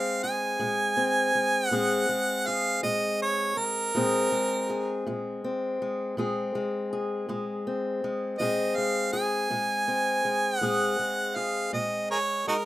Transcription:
Already playing: steel-string acoustic guitar A#2 G#3 C4 G#4, harmonica F5
0.23 steel-string acoustic guitar G#4, harmonica G#5
0.59 steel-string acoustic guitar A#2 G#3
0.97 steel-string acoustic guitar C4
1.35 steel-string acoustic guitar G#3
1.67 steel-string acoustic guitar A#2, harmonica F#5
1.72 steel-string acoustic guitar G#3 C4 G#4
2.09 steel-string acoustic guitar G#3
2.47 steel-string acoustic guitar G#4, harmonica F5
2.83 steel-string acoustic guitar A#2 G#3, harmonica D#5
3.22 harmonica C#5
3.57 steel-string acoustic guitar G#3, harmonica A#4
3.95 steel-string acoustic guitar A#2 G#3 C4 G#4
4.32 steel-string acoustic guitar G#3
4.70 steel-string acoustic guitar G#4
5.07 steel-string acoustic guitar A#2 G#3
5.44 steel-string acoustic guitar C4
5.82 steel-string acoustic guitar G#3
6.17 steel-string acoustic guitar A#2 G#3 C4 G#4
6.55 steel-string acoustic guitar G#3
6.93 steel-string acoustic guitar G#4
7.29 steel-string acoustic guitar A#2 G#3
7.67 steel-string acoustic guitar C4
8.04 steel-string acoustic guitar G#3
8.38 steel-string acoustic guitar A#2 G#3 C4 G#4, harmonica D#5
8.76 steel-string acoustic guitar G#3, harmonica F5
9.13 steel-string acoustic guitar G#4, harmonica G#5
9.50 steel-string acoustic guitar A#2 G#3
9.88 steel-string acoustic guitar C4
10.25 steel-string acoustic guitar G#3
10.58 steel-string acoustic guitar A#2 G#3, harmonica F#5
10.62 steel-string acoustic guitar C4 G#4
10.99 steel-string acoustic guitar G#3
11.36 steel-string acoustic guitar G#4, harmonica F5
11.73 steel-string acoustic guitar A#2 G#3, harmonica D#5
12.11 harmonica G#4 A#4 C#5
12.47 steel-string acoustic guitar G#3, harmonica D#4 F#4 A#4

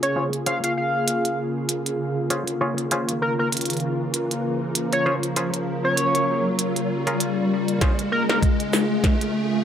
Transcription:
Already playing: analog synth pad C#3 A#3 F4 G#4, riser
0.03 analog synth lead C#5, closed hi-hat
0.16 clav C#4 F4 G#4 C5
0.33 closed hi-hat
0.46 clav C#4 F4 G#4 C5, analog synth lead F5, closed hi-hat
0.64 analog synth lead F5, closed hi-hat
0.77 analog synth lead F5
1.08 closed hi-hat
1.25 closed hi-hat
1.69 closed hi-hat
1.86 closed hi-hat
2.30 clav C#4 F4 G#4 C5, closed hi-hat
2.48 closed hi-hat
2.61 clav C#4 F4 G#4 C#5
2.78 closed hi-hat
2.91 clav C#4 F4 G#4 C5, analog synth pad A#4, closed hi-hat
3.09 closed hi-hat
3.22 analog synth lead A#4
3.39 analog synth lead A#4
3.52 closed hi-hat
3.57 closed hi-hat
3.61 closed hi-hat
3.65 closed hi-hat
3.70 closed hi-hat
3.73 closed hi-hat
3.77 closed hi-hat
3.80 closed hi-hat
4.14 closed hi-hat
4.31 closed hi-hat
4.75 closed hi-hat
4.93 analog synth lead C#5, closed hi-hat
5.06 clav C#4 F4 G#4 C5
5.23 closed hi-hat
5.36 clav C#4 F4 G#4 C5, closed hi-hat
5.54 closed hi-hat
5.84 analog synth lead C#5
5.97 closed hi-hat
6.15 closed hi-hat
6.59 closed hi-hat
6.76 closed hi-hat
7.07 clav C#4 F4 G#4 A#4, closed hi-hat
7.20 closed hi-hat
7.68 closed hi-hat
7.81 clav C#4 F4 G#4 C5, analog synth pad G#4, kick, snare, closed hi-hat
7.99 closed hi-hat
8.12 analog synth lead A#4
8.29 analog synth lead A#4, snare
8.43 kick, closed hi-hat
8.60 closed hi-hat
8.73 snare, shaker
9.04 kick, snare, closed hi-hat
9.21 closed hi-hat

